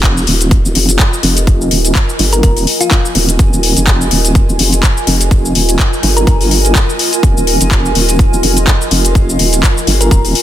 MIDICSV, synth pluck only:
0, 0, Header, 1, 2, 480
1, 0, Start_track
1, 0, Key_signature, -4, "minor"
1, 0, Tempo, 480000
1, 1472, Time_signature, 4, 2, 24, 8
1, 10424, End_track
2, 0, Start_track
2, 0, Title_t, "Synth pluck"
2, 0, Program_c, 0, 84
2, 2327, Note_on_c, 0, 70, 91
2, 2394, Note_off_c, 0, 70, 0
2, 2432, Note_on_c, 0, 70, 78
2, 2518, Note_off_c, 0, 70, 0
2, 2805, Note_on_c, 0, 65, 93
2, 2873, Note_off_c, 0, 65, 0
2, 2912, Note_on_c, 0, 65, 77
2, 2998, Note_off_c, 0, 65, 0
2, 6167, Note_on_c, 0, 70, 91
2, 6234, Note_off_c, 0, 70, 0
2, 6274, Note_on_c, 0, 70, 78
2, 6359, Note_off_c, 0, 70, 0
2, 10007, Note_on_c, 0, 70, 89
2, 10074, Note_off_c, 0, 70, 0
2, 10114, Note_on_c, 0, 70, 78
2, 10199, Note_off_c, 0, 70, 0
2, 10424, End_track
0, 0, End_of_file